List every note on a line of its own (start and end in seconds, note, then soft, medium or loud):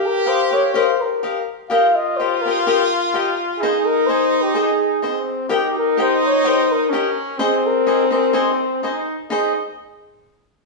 0.00 1.49 G4 loud
0.06 0.30 A#4 medium
0.26 0.42 G4 medium
0.26 0.42 A#4 medium
0.26 0.54 C5 medium
0.26 0.42 D#5 medium
0.26 0.42 F5 medium
0.51 0.65 G4 soft
0.51 0.66 A#4 medium
0.51 0.75 C#5 medium
0.51 0.66 D#5 soft
0.51 0.66 F5 soft
0.74 0.90 G4 medium
0.74 0.90 A#4 medium
0.74 1.03 C5 medium
0.74 0.91 D#5 medium
0.74 0.91 F5 medium
1.01 1.49 A#4 medium
1.23 1.38 G4 soft
1.23 1.38 A#4 soft
1.23 1.39 D#5 medium
1.23 1.39 F5 medium
1.69 3.62 F4 loud
1.69 1.86 G4 medium
1.69 1.86 A#4 medium
1.69 1.87 D#5 medium
1.69 1.97 F5 medium
1.69 1.87 G5 medium
1.95 2.18 D#5 medium
2.17 2.35 G4 medium
2.17 2.35 A#4 medium
2.17 2.43 C5 medium
2.17 2.35 D#5 medium
2.17 2.35 G5 medium
2.42 2.58 G4 soft
2.42 2.90 A#4 medium
2.47 2.59 A#4 soft
2.47 2.59 D#5 medium
2.47 2.59 G5 medium
2.67 2.82 G4 medium
2.67 2.82 A#4 medium
2.67 2.82 D#5 medium
2.67 2.82 G5 medium
3.14 3.29 G4 medium
3.14 3.29 A#4 medium
3.14 3.29 D#5 medium
3.14 3.30 G5 medium
3.59 5.03 D#4 loud
3.59 3.77 D#4 medium
3.59 3.87 G#4 medium
3.59 3.77 G#4 medium
3.59 3.77 C5 medium
3.59 3.77 D#5 medium
3.86 4.08 A#4 medium
4.07 4.23 D#4 medium
4.07 4.23 G#4 medium
4.07 4.44 C5 medium
4.07 4.24 C5 medium
4.07 4.24 D#5 medium
4.42 4.56 G4 medium
4.54 4.70 D#4 medium
4.54 5.28 G#4 medium
4.54 4.70 G#4 medium
4.54 4.71 C5 medium
4.54 4.71 D#5 medium
5.02 5.48 C4 medium
5.02 5.18 D#4 medium
5.02 5.18 G#4 soft
5.02 5.18 C5 medium
5.02 5.19 D#5 medium
5.49 6.91 D#4 loud
5.49 5.65 G4 medium
5.49 5.76 G4 medium
5.49 5.66 A#4 medium
5.49 5.66 D#5 medium
5.49 5.66 G5 medium
5.78 5.98 A#4 medium
5.97 6.13 G4 medium
5.97 6.14 A#4 medium
5.97 6.28 C5 medium
5.97 6.14 D#5 medium
5.97 6.14 G5 medium
6.27 6.48 C#5 medium
6.44 6.60 G4 medium
6.44 6.61 A#4 medium
6.44 6.73 C5 medium
6.44 6.61 D#5 medium
6.44 6.61 G5 medium
6.72 7.18 A#4 medium
6.90 7.39 C#4 loud
6.90 7.08 G4 medium
6.90 7.08 A#4 medium
6.94 7.09 D#5 medium
6.94 7.09 G5 medium
7.38 8.82 C4 medium
7.38 7.55 D#4 medium
7.38 7.55 G#4 medium
7.38 7.55 C5 medium
7.38 7.55 D#5 medium
7.42 7.68 G#4 medium
7.67 8.05 A#4 medium
7.86 8.02 D#4 medium
7.86 8.02 G#4 medium
7.86 8.03 C5 medium
7.86 8.03 D#5 medium
8.06 8.15 C5 medium
8.11 8.25 D#4 medium
8.11 8.25 G#4 medium
8.11 8.34 A#4 medium
8.11 8.25 C5 medium
8.11 8.26 D#5 medium
8.33 8.49 D#4 medium
8.33 8.50 G#4 medium
8.33 8.50 C5 medium
8.33 8.79 C5 medium
8.33 8.50 D#5 medium
8.83 9.17 D#4 medium
8.83 8.98 D#4 medium
8.83 8.99 G#4 medium
8.83 8.99 C5 medium
8.83 8.99 D#5 medium
9.30 9.51 D#4 medium
9.30 9.55 D#4 medium
9.30 9.55 G#4 medium
9.30 9.52 G#4 medium
9.30 9.52 C5 medium
9.30 9.52 D#5 medium